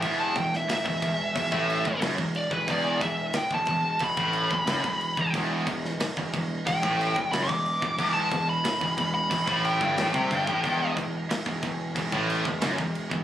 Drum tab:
CC |x-x-x-x-x-x-x-x-|x-x-x-x-x-x-x-x-|x-x-x-x-x-x-x-x-|x-x-x-x-x-x-x-x-|
SD |---oo-------o---|----o-------o---|---oo-------o---|----o-------o---|
BD |o-o--oo-oo-o-o-o|o-o--oo-oo-o-o-o|o-o--oo-oo-o-o-o|o-o--oo-oo-o-ooo|

CC |x-x-x-x-x-x-x-x-|
SD |----o-------o---|
BD |o-o--oo-oo-o-o-o|